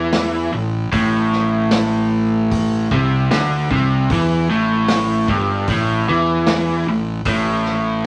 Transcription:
0.00 0.48 E2 medium
0.00 0.52 E3 medium
0.13 snare loud
0.13 open hi-hat soft
0.52 0.89 A1 medium
0.52 0.85 A2 medium
0.92 2.87 A1 medium
0.92 2.90 A2 medium
0.92 kick loud
0.92 open hi-hat soft
1.32 snare soft
1.71 snare loud
1.71 open hi-hat soft
2.52 kick loud
2.52 open hi-hat medium
2.91 3.28 C2 loud
2.91 3.30 C3 loud
2.91 kick loud
3.31 3.68 D2 medium
3.31 3.69 D3 medium
3.31 snare loud
3.31 open hi-hat medium
3.71 4.07 C2 medium
3.71 4.09 C3 medium
3.71 kick loud
4.10 4.47 E2 medium
4.10 4.49 E3 loud
4.10 kick loud
4.10 open hi-hat medium
4.50 5.25 A1 medium
4.50 5.27 A2 medium
4.88 snare loud
4.88 open hi-hat medium
5.28 5.65 G1 medium
5.28 5.67 G2 loud
5.28 kick loud
5.67 6.05 A1 medium
5.67 6.07 A2 medium
5.67 kick medium
5.67 open hi-hat medium
6.08 6.83 E2 medium
6.08 6.86 E3 loud
6.47 snare loud
6.47 open hi-hat medium
6.87 7.23 A1 medium
6.87 7.19 A2 medium
7.25 8.06 A1 medium
7.25 8.06 A2 loud
7.25 kick loud
7.25 open hi-hat medium
7.65 snare soft

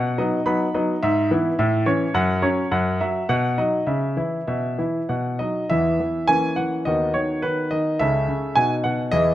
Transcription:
0.00 0.18 B2 medium
0.00 0.20 F#5 medium
0.18 0.39 F#3 medium
0.18 0.39 B3 medium
0.18 0.39 D#4 medium
0.18 0.48 D#5 medium
0.46 0.66 F#3 medium
0.46 0.67 B3 medium
0.46 0.67 D#4 medium
0.46 0.76 B5 medium
0.74 0.95 F#3 medium
0.74 0.95 B3 medium
0.74 0.95 D#4 medium
0.74 1.03 D#5 medium
1.03 1.30 G#2 medium
1.03 1.32 E5 medium
1.31 1.51 E3 medium
1.31 1.51 B3 medium
1.31 1.59 E4 medium
1.59 1.86 A2 medium
1.59 1.88 E5 medium
1.86 2.06 E3 medium
1.86 2.07 C#4 medium
1.86 2.14 C#5 medium
2.14 2.42 F#2 medium
2.14 2.45 F#5 medium
2.42 2.63 F#3 medium
2.42 2.64 C#4 medium
2.42 2.72 C#5 medium
2.71 3.00 F#2 medium
2.71 3.02 F#5 medium
3.01 3.21 F#3 medium
3.01 3.29 E5 medium
3.29 3.57 B2 medium
3.29 3.59 F#5 medium
3.58 3.79 F#3 soft
3.58 3.79 D#4 soft
3.58 3.87 D#5 medium
3.87 4.16 C#3 medium
3.87 4.19 E5 medium
4.17 4.39 E3 soft
4.17 4.48 E4 soft
4.48 4.78 B2 medium
4.48 4.81 E5 medium
4.78 5.01 E3 soft
4.78 5.10 E4 soft
5.09 5.40 B2 medium
5.09 5.42 F#5 soft
5.39 5.63 F#3 soft
5.39 5.63 D#4 soft
5.39 5.71 D#5 medium
5.70 5.99 E2 soft
5.70 5.99 E3 medium
5.70 6.25 B3 soft
5.70 6.25 E4 soft
5.70 6.28 E5 medium
6.00 6.27 E3 soft
6.28 6.55 E3 soft
6.28 6.82 A#3 soft
6.28 6.82 C#4 soft
6.28 6.57 G#5 medium
6.56 6.85 E3 soft
6.56 6.74 F#5 medium
6.85 7.15 D#2 soft
6.85 7.14 D#3 medium
6.85 7.97 B3 soft
6.85 7.97 F#4 soft
6.85 7.12 D#5 medium
7.14 7.42 D#3 soft
7.14 7.43 C#5 medium
7.42 7.70 D#3 soft
7.42 7.69 B4 medium
7.71 7.99 D#3 soft
7.71 8.00 D#5 medium
7.99 8.28 C#2 soft
7.99 8.27 C#3 medium
7.99 8.53 C#4 soft
7.99 8.53 A4 soft
7.99 8.56 E5 medium
8.28 8.56 C#3 soft
8.55 8.84 B2 medium
8.55 9.09 D#4 soft
8.55 9.09 F#4 soft
8.55 8.73 G#5 medium
8.84 9.12 B2 soft
8.84 9.01 F#5 medium
9.11 9.34 E2 medium
9.11 9.34 E3 medium
9.11 9.34 E4 soft
9.11 9.34 G#4 soft
9.11 9.34 D#5 loud

